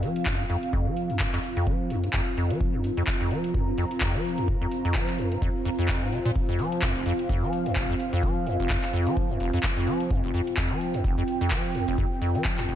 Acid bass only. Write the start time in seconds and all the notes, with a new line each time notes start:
0.03 F3
0.26 F2
0.40 G#2
0.50 F2
0.73 F2
0.86 F3
1.10 F2
1.20 G#2
1.33 F2
1.57 F2
1.67 F3
1.90 F2
2.04 G#2
2.14 F2
2.37 F2
2.51 F3
2.74 F2
2.84 G#2
2.97 F2
3.21 F2
3.31 F3
3.54 F2
3.68 G#2
3.78 F2
4.01 F2
4.15 F3
4.38 F2
4.48 G#2
4.61 F2
4.85 F2
4.95 F3
5.19 F2
5.32 G#2
5.42 F2
5.65 F2
5.79 F2
6.02 G#2
6.12 C3
6.26 A#2
6.49 F2
6.59 F3
6.83 F2
6.96 F1
7.06 F2
7.29 F2
7.43 F3
7.66 F2
7.76 F1
7.90 F2
8.13 F2
8.23 F3
8.46 F2
8.60 F1
8.70 F2
8.93 F2
9.07 F3
9.30 F2
9.40 F1
9.54 F2
9.77 F2
9.87 F3
10.11 F2
10.24 F1
10.34 F2
10.57 F2
10.71 F3
10.94 F2
11.04 F1
11.18 F2
11.41 F2
11.51 F3
11.75 F2
11.88 F1
11.98 F2
12.22 F2
12.35 F3
12.58 F2
12.69 F1